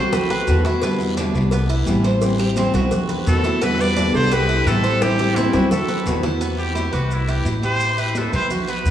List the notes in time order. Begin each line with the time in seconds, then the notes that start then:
Already playing: B1 G3 C4 E4 F#4 A4 C5
0.12 F#4 B4, muted steel-string acoustic guitar stroke, cowbell, low bongo, high conga, low conga, long guiro, maracas
0.30 B4, low bongo, high conga, maracas
0.47 E2 B2 D#3 A3 B3 F#4, cowbell, low bongo, high conga, short guiro, maracas
0.64 A3 B3 E4 F#4, cowbell, low bongo, short guiro, maracas
0.81 B2 D3 G3 B3 E4, cowbell, high conga, long guiro, maracas
1.00 G3 B3 E4, high conga, maracas
1.16 B2 D3 G3 B3 D4 E4, cowbell, high conga, short guiro, maracas
1.34 C2 G3 B3 E4, high conga, short guiro, maracas
1.51 B3, muted steel-string acoustic guitar stroke, cowbell, high conga, long guiro, maracas
1.69 E4, high conga, maracas
1.86 A1 C3 E3 G3 B3 E4, cowbell, high conga, short guiro, maracas
2.04 G3 B3 E4 C5, cowbell, short guiro, maracas
2.22 E3 G3 C4 E4, cowbell, high conga, long guiro, maracas
2.38 G3 C4 E4 G4, cowbell, high conga, maracas
2.56 E3 G3 C4 E4, cowbell, high conga, short guiro, maracas
2.73 B1 G3 C4 E4 F#4, cowbell, high conga, short guiro, maracas
2.91 muted steel-string acoustic guitar stroke, cowbell, high conga, low conga, long guiro, maracas
3.09 B4, high conga, low conga, maracas
3.26 E2 B2 D#3 A3 B3 F#4 A4, cowbell, high conga, short guiro, maracas
3.44 A3 B3 E4 F#4, cowbell, high conga, short guiro, maracas
3.62 B2 D3 G3 B3 E4 G4 B4, cowbell, high conga, long guiro, maracas
3.79 G3 B3 E4 B4 D5, high conga, maracas
3.96 B2 D3 G3 B3 D4 E4, cowbell, high conga, short guiro, maracas
4.14 C2 G3 B3 E4 A4 C5, short guiro, maracas
4.31 B3 G4 B4, muted steel-string acoustic guitar stroke, cowbell, high conga, long guiro, maracas
4.49 E4, high conga, maracas
4.66 A1 C3 E3 G3 B3 E4 A4, cowbell, high conga, short guiro, maracas
4.84 G3 B3 E4 C5, cowbell, short guiro, maracas
5.02 E3 G3 C4 E4 G4, cowbell, high bongo, long guiro, maracas
5.19 G3 C4 E4 G4, cowbell, high bongo, high conga, maracas
5.36 E3 G3 C4 E4, cowbell, high bongo, high conga, short guiro, maracas
5.53 B1 G3 C4 E4 F#4, cowbell, high bongo, high conga, short guiro, maracas
5.71 F#4 A4, muted steel-string acoustic guitar stroke, cowbell, low bongo, high conga, low conga, long guiro, maracas
5.89 B4, low bongo, high conga, maracas
6.06 E2 B2 D#3 A3 B3 F#4, cowbell, short guiro, maracas
6.23 A3 B3 E4 F#4, cowbell, low bongo, short guiro, maracas
6.41 B3, high conga, long guiro, maracas
6.58 G4, high conga, maracas
6.75 E4, high conga, short guiro, maracas
6.92 C2 F#4 B4, high conga, short guiro, maracas
7.10 E4, high conga, long guiro, maracas
7.28 E4 G4, high conga, maracas
7.45 A1, high conga, short guiro, maracas
7.63 G4 C5, high conga, short guiro, maracas
7.80 high conga, long guiro, maracas
7.98 E4 B4, high conga, maracas
8.15 A4, high conga, short guiro, maracas
8.33 B1 B4 C5, high conga, short guiro, maracas
8.50 F#4, high conga, low conga, long guiro, maracas
8.68 B3 B4, high conga, maracas
8.85 E2, high conga, short guiro, maracas